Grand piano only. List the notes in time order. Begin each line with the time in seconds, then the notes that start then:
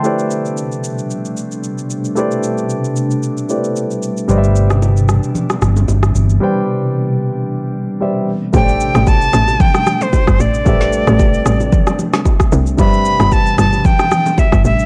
Already playing: G5 C6
0.03 A3 E4 G4 B4 C5 D5
2.15 A3 E4 G4 B4 C5 D5
3.49 A3 E4 G4 B4 C5 D5
4.28 G3 G4 B4 C5 D5 D#5
4.38 E5
6.40 G3 G4 B4 C5 D5 G5
8.00 G3 G4 B4 C5 D5 E5
8.53 A3 G4 A4 C5 C#5
8.62 D5
10.65 A3 G4 B4 C5 E5
12.77 G3 G4 B4 C5 D5 E5